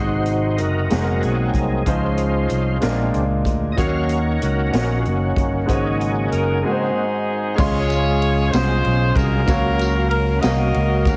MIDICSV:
0, 0, Header, 1, 7, 480
1, 0, Start_track
1, 0, Key_signature, -5, "major"
1, 0, Tempo, 634921
1, 1404, Time_signature, 6, 3, 24, 8
1, 8442, End_track
2, 0, Start_track
2, 0, Title_t, "Horn section"
2, 0, Program_c, 0, 61
2, 4769, Note_on_c, 0, 70, 68
2, 4993, Note_off_c, 0, 70, 0
2, 5014, Note_on_c, 0, 68, 62
2, 5026, Note_on_c, 0, 60, 47
2, 5027, Note_on_c, 0, 63, 53
2, 5708, Note_off_c, 0, 60, 0
2, 5708, Note_off_c, 0, 63, 0
2, 5717, Note_on_c, 0, 73, 102
2, 5732, Note_off_c, 0, 68, 0
2, 5737, Note_on_c, 0, 65, 71
2, 5740, Note_on_c, 0, 68, 66
2, 6412, Note_off_c, 0, 73, 0
2, 6422, Note_off_c, 0, 65, 0
2, 6423, Note_off_c, 0, 68, 0
2, 6429, Note_on_c, 0, 72, 91
2, 6444, Note_on_c, 0, 68, 65
2, 6445, Note_on_c, 0, 65, 71
2, 6911, Note_on_c, 0, 70, 94
2, 6918, Note_off_c, 0, 65, 0
2, 6918, Note_off_c, 0, 72, 0
2, 6926, Note_on_c, 0, 66, 65
2, 6927, Note_on_c, 0, 65, 66
2, 7134, Note_off_c, 0, 68, 0
2, 7614, Note_off_c, 0, 65, 0
2, 7614, Note_off_c, 0, 66, 0
2, 7619, Note_off_c, 0, 70, 0
2, 7628, Note_on_c, 0, 70, 90
2, 7858, Note_off_c, 0, 70, 0
2, 7867, Note_on_c, 0, 75, 99
2, 7875, Note_on_c, 0, 66, 74
2, 7880, Note_on_c, 0, 70, 72
2, 8353, Note_off_c, 0, 75, 0
2, 8442, Note_off_c, 0, 66, 0
2, 8442, Note_off_c, 0, 70, 0
2, 8442, End_track
3, 0, Start_track
3, 0, Title_t, "Grand piano"
3, 0, Program_c, 1, 0
3, 0, Control_c, 1, 64, 127
3, 0, Note_on_c, 1, 48, 59
3, 0, Note_on_c, 1, 56, 61
3, 0, Note_on_c, 1, 63, 49
3, 0, Note_on_c, 1, 66, 55
3, 0, Note_on_c, 1, 72, 63
3, 0, Note_on_c, 1, 75, 67
3, 613, Note_off_c, 1, 56, 0
3, 616, Note_off_c, 1, 63, 0
3, 616, Note_off_c, 1, 66, 0
3, 620, Note_off_c, 1, 75, 0
3, 681, Note_on_c, 1, 56, 52
3, 689, Note_on_c, 1, 63, 51
3, 690, Note_on_c, 1, 44, 48
3, 693, Note_on_c, 1, 66, 46
3, 698, Note_on_c, 1, 68, 40
3, 739, Note_off_c, 1, 68, 0
3, 743, Note_on_c, 1, 70, 58
3, 1334, Note_off_c, 1, 56, 0
3, 1339, Note_off_c, 1, 63, 0
3, 1341, Note_off_c, 1, 66, 0
3, 1366, Note_off_c, 1, 70, 0
3, 1378, Note_off_c, 1, 44, 0
3, 1407, Note_on_c, 1, 56, 65
3, 1410, Note_on_c, 1, 61, 55
3, 1413, Control_c, 1, 64, 0
3, 1414, Note_off_c, 1, 48, 0
3, 1417, Note_on_c, 1, 53, 47
3, 1418, Note_off_c, 1, 72, 0
3, 1422, Note_on_c, 1, 65, 59
3, 1427, Note_on_c, 1, 72, 66
3, 1557, Control_c, 1, 64, 127
3, 2059, Note_off_c, 1, 56, 0
3, 2061, Note_off_c, 1, 61, 0
3, 2066, Note_off_c, 1, 65, 0
3, 2069, Note_off_c, 1, 72, 0
3, 2103, Note_off_c, 1, 53, 0
3, 2124, Note_on_c, 1, 56, 64
3, 2128, Note_on_c, 1, 46, 59
3, 2134, Note_on_c, 1, 62, 60
3, 2135, Note_on_c, 1, 65, 57
3, 2137, Control_c, 1, 64, 0
3, 2138, Note_on_c, 1, 70, 73
3, 2272, Control_c, 1, 64, 127
3, 2778, Note_off_c, 1, 56, 0
3, 2783, Note_off_c, 1, 62, 0
3, 2784, Note_off_c, 1, 65, 0
3, 2785, Note_off_c, 1, 70, 0
3, 2819, Note_off_c, 1, 46, 0
3, 2847, Note_on_c, 1, 58, 64
3, 2849, Note_on_c, 1, 51, 50
3, 2850, Note_on_c, 1, 66, 60
3, 2851, Note_on_c, 1, 63, 62
3, 2857, Note_on_c, 1, 73, 69
3, 2860, Control_c, 1, 64, 0
3, 2979, Control_c, 1, 64, 127
3, 3500, Note_off_c, 1, 58, 0
3, 3502, Note_off_c, 1, 63, 0
3, 3502, Note_off_c, 1, 66, 0
3, 3505, Note_off_c, 1, 73, 0
3, 3540, Note_off_c, 1, 51, 0
3, 3561, Note_on_c, 1, 58, 58
3, 3571, Note_on_c, 1, 63, 47
3, 3574, Note_on_c, 1, 66, 43
3, 3579, Note_on_c, 1, 73, 56
3, 4217, Note_off_c, 1, 58, 0
3, 4222, Note_off_c, 1, 63, 0
3, 4224, Note_off_c, 1, 66, 0
3, 4226, Note_off_c, 1, 73, 0
3, 4277, Note_on_c, 1, 56, 58
3, 4285, Note_on_c, 1, 63, 54
3, 4288, Note_on_c, 1, 44, 46
3, 4288, Note_on_c, 1, 66, 55
3, 4296, Note_on_c, 1, 72, 51
3, 4300, Control_c, 1, 64, 0
3, 4342, Note_on_c, 1, 73, 69
3, 4343, Note_off_c, 1, 72, 0
3, 4453, Control_c, 1, 64, 127
3, 4935, Note_off_c, 1, 56, 0
3, 4939, Note_off_c, 1, 63, 0
3, 4941, Note_off_c, 1, 66, 0
3, 4968, Note_off_c, 1, 73, 0
3, 4979, Note_off_c, 1, 44, 0
3, 5012, Note_on_c, 1, 56, 55
3, 5013, Note_on_c, 1, 63, 54
3, 5021, Control_c, 1, 64, 0
3, 5021, Note_on_c, 1, 44, 58
3, 5023, Note_on_c, 1, 66, 56
3, 5030, Note_on_c, 1, 70, 51
3, 5070, Note_off_c, 1, 70, 0
3, 5075, Note_on_c, 1, 72, 69
3, 5134, Control_c, 1, 64, 127
3, 5662, Note_off_c, 1, 56, 0
3, 5662, Note_off_c, 1, 63, 0
3, 5667, Note_off_c, 1, 66, 0
3, 5693, Note_off_c, 1, 72, 0
3, 5705, Note_off_c, 1, 44, 0
3, 5732, Note_on_c, 1, 56, 75
3, 5736, Note_on_c, 1, 61, 66
3, 5740, Control_c, 1, 64, 0
3, 5740, Note_on_c, 1, 65, 63
3, 5741, Note_on_c, 1, 49, 58
3, 5745, Note_on_c, 1, 84, 85
3, 5897, Control_c, 1, 64, 127
3, 6381, Note_off_c, 1, 56, 0
3, 6383, Note_off_c, 1, 61, 0
3, 6385, Note_off_c, 1, 65, 0
3, 6388, Note_off_c, 1, 84, 0
3, 6424, Note_off_c, 1, 49, 0
3, 6451, Note_on_c, 1, 56, 60
3, 6456, Note_on_c, 1, 61, 55
3, 6461, Note_on_c, 1, 65, 55
3, 6463, Note_on_c, 1, 75, 72
3, 7099, Note_off_c, 1, 56, 0
3, 7102, Note_off_c, 1, 61, 0
3, 7104, Note_off_c, 1, 65, 0
3, 7105, Note_off_c, 1, 75, 0
3, 7153, Note_on_c, 1, 58, 80
3, 7159, Note_on_c, 1, 49, 57
3, 7165, Note_on_c, 1, 77, 67
3, 7166, Note_on_c, 1, 54, 67
3, 7173, Note_on_c, 1, 73, 74
3, 7174, Control_c, 1, 64, 0
3, 7326, Control_c, 1, 64, 127
3, 7808, Note_off_c, 1, 58, 0
3, 7814, Note_off_c, 1, 54, 0
3, 7814, Note_off_c, 1, 77, 0
3, 7818, Note_off_c, 1, 73, 0
3, 7849, Note_off_c, 1, 49, 0
3, 7876, Note_on_c, 1, 58, 58
3, 7880, Note_on_c, 1, 66, 57
3, 7883, Note_on_c, 1, 77, 63
3, 7889, Note_on_c, 1, 70, 80
3, 8442, Note_off_c, 1, 58, 0
3, 8442, Note_off_c, 1, 66, 0
3, 8442, Note_off_c, 1, 70, 0
3, 8442, Note_off_c, 1, 77, 0
3, 8442, End_track
4, 0, Start_track
4, 0, Title_t, "Tonewheel organ"
4, 0, Program_c, 2, 16
4, 0, Note_on_c, 2, 63, 56
4, 0, Note_on_c, 2, 66, 53
4, 0, Note_on_c, 2, 72, 68
4, 430, Note_on_c, 2, 70, 77
4, 442, Note_off_c, 2, 63, 0
4, 444, Note_off_c, 2, 66, 0
4, 451, Note_on_c, 2, 63, 56
4, 453, Note_on_c, 2, 66, 54
4, 456, Note_off_c, 2, 72, 0
4, 706, Note_on_c, 2, 54, 43
4, 713, Note_on_c, 2, 58, 39
4, 724, Note_on_c, 2, 60, 49
4, 932, Note_off_c, 2, 70, 0
4, 932, Note_on_c, 2, 68, 90
4, 937, Note_off_c, 2, 60, 0
4, 938, Note_off_c, 2, 63, 0
4, 946, Note_on_c, 2, 60, 54
4, 947, Note_on_c, 2, 63, 47
4, 1139, Note_off_c, 2, 66, 0
4, 1386, Note_off_c, 2, 54, 0
4, 1386, Note_off_c, 2, 60, 0
4, 1386, Note_off_c, 2, 63, 0
4, 1390, Note_off_c, 2, 58, 0
4, 1403, Note_on_c, 2, 65, 58
4, 1411, Note_on_c, 2, 53, 45
4, 1416, Note_on_c, 2, 56, 43
4, 1416, Note_on_c, 2, 72, 38
4, 1418, Note_on_c, 2, 63, 49
4, 1423, Note_off_c, 2, 68, 0
4, 2100, Note_off_c, 2, 53, 0
4, 2102, Note_off_c, 2, 72, 0
4, 2103, Note_off_c, 2, 63, 0
4, 2129, Note_off_c, 2, 56, 0
4, 2139, Note_on_c, 2, 56, 43
4, 2141, Note_on_c, 2, 62, 51
4, 2145, Note_on_c, 2, 60, 40
4, 2336, Note_off_c, 2, 65, 0
4, 2453, Note_off_c, 2, 56, 0
4, 2455, Note_off_c, 2, 62, 0
4, 2456, Note_off_c, 2, 60, 0
4, 2813, Note_on_c, 2, 75, 64
4, 2857, Note_off_c, 2, 75, 0
4, 2862, Note_on_c, 2, 54, 42
4, 2862, Note_on_c, 2, 61, 43
4, 2863, Note_on_c, 2, 73, 81
4, 2867, Note_on_c, 2, 66, 55
4, 2867, Note_on_c, 2, 77, 47
4, 2874, Note_on_c, 2, 70, 65
4, 3176, Note_off_c, 2, 54, 0
4, 3176, Note_off_c, 2, 61, 0
4, 3178, Note_off_c, 2, 77, 0
4, 3340, Note_off_c, 2, 70, 0
4, 3343, Note_off_c, 2, 66, 0
4, 3349, Note_on_c, 2, 70, 85
4, 3351, Note_off_c, 2, 73, 0
4, 3352, Note_on_c, 2, 61, 61
4, 3352, Note_on_c, 2, 66, 57
4, 3776, Note_on_c, 2, 65, 47
4, 3780, Note_off_c, 2, 70, 0
4, 3820, Note_off_c, 2, 65, 0
4, 3833, Note_off_c, 2, 61, 0
4, 3841, Note_off_c, 2, 66, 0
4, 3842, Note_on_c, 2, 61, 46
4, 3846, Note_on_c, 2, 58, 46
4, 3850, Note_on_c, 2, 66, 60
4, 4277, Note_off_c, 2, 61, 0
4, 4279, Note_off_c, 2, 58, 0
4, 4295, Note_on_c, 2, 61, 38
4, 4297, Note_off_c, 2, 66, 0
4, 4301, Note_on_c, 2, 58, 43
4, 4301, Note_on_c, 2, 63, 44
4, 4303, Note_on_c, 2, 49, 48
4, 4304, Note_on_c, 2, 68, 63
4, 4306, Note_on_c, 2, 66, 43
4, 4983, Note_off_c, 2, 61, 0
4, 4986, Note_off_c, 2, 58, 0
4, 4988, Note_off_c, 2, 66, 0
4, 5013, Note_on_c, 2, 58, 44
4, 5016, Note_on_c, 2, 60, 42
4, 5023, Note_on_c, 2, 66, 48
4, 5226, Note_off_c, 2, 63, 0
4, 5227, Note_off_c, 2, 49, 0
4, 5227, Note_off_c, 2, 68, 0
4, 5331, Note_off_c, 2, 58, 0
4, 5333, Note_off_c, 2, 60, 0
4, 5336, Note_off_c, 2, 66, 0
4, 5704, Note_on_c, 2, 77, 54
4, 5707, Note_on_c, 2, 61, 53
4, 5713, Note_on_c, 2, 68, 71
4, 5716, Note_on_c, 2, 56, 60
4, 7124, Note_off_c, 2, 77, 0
4, 7126, Note_off_c, 2, 61, 0
4, 7129, Note_off_c, 2, 68, 0
4, 7131, Note_off_c, 2, 56, 0
4, 7162, Note_on_c, 2, 77, 55
4, 7167, Note_on_c, 2, 54, 62
4, 7167, Note_on_c, 2, 61, 60
4, 7172, Note_on_c, 2, 69, 56
4, 7215, Note_on_c, 2, 70, 59
4, 7218, Note_off_c, 2, 69, 0
4, 8442, Note_off_c, 2, 54, 0
4, 8442, Note_off_c, 2, 61, 0
4, 8442, Note_off_c, 2, 70, 0
4, 8442, Note_off_c, 2, 77, 0
4, 8442, End_track
5, 0, Start_track
5, 0, Title_t, "French horn section"
5, 0, Program_c, 3, 60
5, 0, Note_on_c, 3, 54, 65
5, 0, Note_on_c, 3, 56, 60
5, 0, Note_on_c, 3, 63, 74
5, 0, Note_on_c, 3, 72, 51
5, 1371, Note_off_c, 3, 54, 0
5, 1373, Note_off_c, 3, 63, 0
5, 1375, Note_off_c, 3, 56, 0
5, 1406, Note_on_c, 3, 61, 72
5, 1408, Note_on_c, 3, 53, 60
5, 1410, Note_on_c, 3, 56, 60
5, 2099, Note_off_c, 3, 72, 0
5, 2120, Note_off_c, 3, 61, 0
5, 2122, Note_on_c, 3, 62, 60
5, 2125, Note_on_c, 3, 58, 58
5, 2836, Note_off_c, 3, 53, 0
5, 2837, Note_off_c, 3, 56, 0
5, 2839, Note_off_c, 3, 62, 0
5, 2856, Note_on_c, 3, 61, 79
5, 2858, Note_on_c, 3, 54, 61
5, 2859, Note_on_c, 3, 51, 65
5, 4269, Note_off_c, 3, 58, 0
5, 4293, Note_on_c, 3, 56, 59
5, 4993, Note_off_c, 3, 61, 0
5, 5015, Note_on_c, 3, 60, 62
5, 5706, Note_off_c, 3, 54, 0
5, 5707, Note_off_c, 3, 51, 0
5, 5717, Note_off_c, 3, 56, 0
5, 5725, Note_off_c, 3, 60, 0
5, 8442, End_track
6, 0, Start_track
6, 0, Title_t, "Fingered electric bass"
6, 0, Program_c, 4, 33
6, 0, Note_on_c, 4, 32, 91
6, 453, Note_off_c, 4, 32, 0
6, 453, Note_on_c, 4, 30, 57
6, 669, Note_off_c, 4, 30, 0
6, 694, Note_on_c, 4, 29, 77
6, 910, Note_off_c, 4, 29, 0
6, 938, Note_on_c, 4, 35, 71
6, 1152, Note_off_c, 4, 35, 0
6, 1166, Note_on_c, 4, 36, 73
6, 1386, Note_off_c, 4, 36, 0
6, 1412, Note_on_c, 4, 37, 99
6, 1859, Note_off_c, 4, 37, 0
6, 1895, Note_on_c, 4, 36, 62
6, 2112, Note_off_c, 4, 36, 0
6, 2137, Note_on_c, 4, 34, 86
6, 2354, Note_off_c, 4, 34, 0
6, 2379, Note_on_c, 4, 37, 75
6, 2595, Note_off_c, 4, 37, 0
6, 2613, Note_on_c, 4, 38, 74
6, 2832, Note_off_c, 4, 38, 0
6, 2857, Note_on_c, 4, 39, 102
6, 3304, Note_off_c, 4, 39, 0
6, 3345, Note_on_c, 4, 37, 61
6, 3559, Note_off_c, 4, 37, 0
6, 3579, Note_on_c, 4, 34, 79
6, 3796, Note_off_c, 4, 34, 0
6, 3825, Note_on_c, 4, 30, 77
6, 4040, Note_off_c, 4, 30, 0
6, 4059, Note_on_c, 4, 31, 74
6, 4276, Note_off_c, 4, 31, 0
6, 4302, Note_on_c, 4, 32, 79
6, 4746, Note_off_c, 4, 32, 0
6, 4782, Note_on_c, 4, 30, 59
6, 4998, Note_off_c, 4, 30, 0
6, 5737, Note_on_c, 4, 37, 105
6, 6422, Note_off_c, 4, 37, 0
6, 6452, Note_on_c, 4, 36, 100
6, 6671, Note_off_c, 4, 36, 0
6, 6695, Note_on_c, 4, 35, 94
6, 6912, Note_off_c, 4, 35, 0
6, 6924, Note_on_c, 4, 36, 91
6, 7145, Note_off_c, 4, 36, 0
6, 7167, Note_on_c, 4, 37, 106
6, 7854, Note_off_c, 4, 37, 0
6, 7892, Note_on_c, 4, 36, 95
6, 8108, Note_off_c, 4, 36, 0
6, 8132, Note_on_c, 4, 37, 98
6, 8347, Note_off_c, 4, 37, 0
6, 8362, Note_on_c, 4, 38, 91
6, 8442, Note_off_c, 4, 38, 0
6, 8442, End_track
7, 0, Start_track
7, 0, Title_t, "Drums"
7, 193, Note_on_c, 9, 42, 46
7, 269, Note_off_c, 9, 42, 0
7, 439, Note_on_c, 9, 42, 50
7, 515, Note_off_c, 9, 42, 0
7, 683, Note_on_c, 9, 42, 65
7, 693, Note_on_c, 9, 38, 89
7, 759, Note_off_c, 9, 42, 0
7, 768, Note_off_c, 9, 38, 0
7, 925, Note_on_c, 9, 42, 35
7, 1001, Note_off_c, 9, 42, 0
7, 1162, Note_on_c, 9, 36, 64
7, 1167, Note_on_c, 9, 42, 59
7, 1238, Note_off_c, 9, 36, 0
7, 1243, Note_off_c, 9, 42, 0
7, 1408, Note_on_c, 9, 36, 76
7, 1408, Note_on_c, 9, 42, 75
7, 1483, Note_off_c, 9, 36, 0
7, 1483, Note_off_c, 9, 42, 0
7, 1644, Note_on_c, 9, 42, 50
7, 1720, Note_off_c, 9, 42, 0
7, 1886, Note_on_c, 9, 42, 61
7, 1962, Note_off_c, 9, 42, 0
7, 2128, Note_on_c, 9, 42, 57
7, 2138, Note_on_c, 9, 38, 86
7, 2204, Note_off_c, 9, 42, 0
7, 2214, Note_off_c, 9, 38, 0
7, 2373, Note_on_c, 9, 42, 37
7, 2449, Note_off_c, 9, 42, 0
7, 2609, Note_on_c, 9, 36, 69
7, 2617, Note_on_c, 9, 42, 54
7, 2685, Note_off_c, 9, 36, 0
7, 2693, Note_off_c, 9, 42, 0
7, 2855, Note_on_c, 9, 36, 74
7, 2857, Note_on_c, 9, 42, 70
7, 2930, Note_off_c, 9, 36, 0
7, 2932, Note_off_c, 9, 42, 0
7, 3092, Note_on_c, 9, 42, 52
7, 3167, Note_off_c, 9, 42, 0
7, 3340, Note_on_c, 9, 42, 54
7, 3416, Note_off_c, 9, 42, 0
7, 3578, Note_on_c, 9, 42, 62
7, 3588, Note_on_c, 9, 38, 92
7, 3654, Note_off_c, 9, 42, 0
7, 3664, Note_off_c, 9, 38, 0
7, 3820, Note_on_c, 9, 42, 35
7, 3895, Note_off_c, 9, 42, 0
7, 4056, Note_on_c, 9, 36, 77
7, 4066, Note_on_c, 9, 42, 54
7, 4131, Note_off_c, 9, 36, 0
7, 4142, Note_off_c, 9, 42, 0
7, 4300, Note_on_c, 9, 36, 83
7, 4303, Note_on_c, 9, 42, 81
7, 4375, Note_off_c, 9, 36, 0
7, 4378, Note_off_c, 9, 42, 0
7, 4543, Note_on_c, 9, 42, 50
7, 4619, Note_off_c, 9, 42, 0
7, 4780, Note_on_c, 9, 42, 62
7, 4855, Note_off_c, 9, 42, 0
7, 5732, Note_on_c, 9, 49, 88
7, 5733, Note_on_c, 9, 36, 102
7, 5741, Note_on_c, 9, 54, 63
7, 5808, Note_off_c, 9, 49, 0
7, 5809, Note_off_c, 9, 36, 0
7, 5817, Note_off_c, 9, 54, 0
7, 5971, Note_on_c, 9, 51, 44
7, 5986, Note_on_c, 9, 54, 52
7, 6047, Note_off_c, 9, 51, 0
7, 6062, Note_off_c, 9, 54, 0
7, 6214, Note_on_c, 9, 51, 54
7, 6290, Note_off_c, 9, 51, 0
7, 6450, Note_on_c, 9, 51, 66
7, 6453, Note_on_c, 9, 54, 82
7, 6460, Note_on_c, 9, 38, 112
7, 6526, Note_off_c, 9, 51, 0
7, 6528, Note_off_c, 9, 54, 0
7, 6536, Note_off_c, 9, 38, 0
7, 6687, Note_on_c, 9, 51, 36
7, 6763, Note_off_c, 9, 51, 0
7, 6922, Note_on_c, 9, 36, 92
7, 6927, Note_on_c, 9, 51, 54
7, 6945, Note_on_c, 9, 54, 48
7, 6997, Note_off_c, 9, 36, 0
7, 7002, Note_off_c, 9, 51, 0
7, 7020, Note_off_c, 9, 54, 0
7, 7164, Note_on_c, 9, 36, 106
7, 7167, Note_on_c, 9, 51, 70
7, 7171, Note_on_c, 9, 54, 59
7, 7240, Note_off_c, 9, 36, 0
7, 7243, Note_off_c, 9, 51, 0
7, 7246, Note_off_c, 9, 54, 0
7, 7403, Note_on_c, 9, 51, 49
7, 7419, Note_on_c, 9, 54, 63
7, 7478, Note_off_c, 9, 51, 0
7, 7495, Note_off_c, 9, 54, 0
7, 7642, Note_on_c, 9, 51, 53
7, 7717, Note_off_c, 9, 51, 0
7, 7880, Note_on_c, 9, 51, 64
7, 7885, Note_on_c, 9, 54, 84
7, 7890, Note_on_c, 9, 38, 107
7, 7956, Note_off_c, 9, 51, 0
7, 7961, Note_off_c, 9, 54, 0
7, 7966, Note_off_c, 9, 38, 0
7, 8122, Note_on_c, 9, 51, 38
7, 8197, Note_off_c, 9, 51, 0
7, 8357, Note_on_c, 9, 36, 86
7, 8367, Note_on_c, 9, 51, 55
7, 8370, Note_on_c, 9, 54, 41
7, 8433, Note_off_c, 9, 36, 0
7, 8442, Note_off_c, 9, 51, 0
7, 8442, Note_off_c, 9, 54, 0
7, 8442, End_track
0, 0, End_of_file